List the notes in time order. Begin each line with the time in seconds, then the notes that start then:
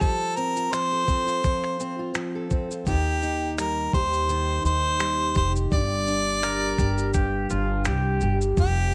0.01 F3 A4, kick, shaker
0.36 C4 A#4, shaker
0.56 F4, shaker
0.72 F3 C5, finger snap, shaker
0.92 A4
1.07 C4, kick, shaker
1.26 F4, shaker
1.44 F3, kick, shaker
1.64 finger snap
1.80 C4, shaker
1.99 F4
2.15 F3, finger snap, shaker
2.35 A4
2.51 C4, kick, shaker
2.71 F4, shaker
2.87 D#2 D#3 G4, kick, shaker
3.22 D#4, shaker
3.59 G3 A#4, finger snap, shaker
3.93 D#2 G4 C5, kick, shaker
4.14 shaker
4.29 D#3, shaker
4.64 D#2 D#4 C5, shaker
4.99 G3, finger snap, shaker
5.35 F1 G4 C5, kick, shaker
5.56 shaker
5.72 G1 G2 D5, kick, shaker
6.07 D4, shaker
6.43 A#4, finger snap, shaker
6.78 G1 G4, kick, shaker
6.98 shaker
7.14 G2 G4, kick, shaker
7.50 G1 D4 F4, shaker
7.85 C2 G3 G4, finger snap, shaker
8.21 G1 G4, shaker
8.41 shaker
8.57 F1 F3 G4, kick, shaker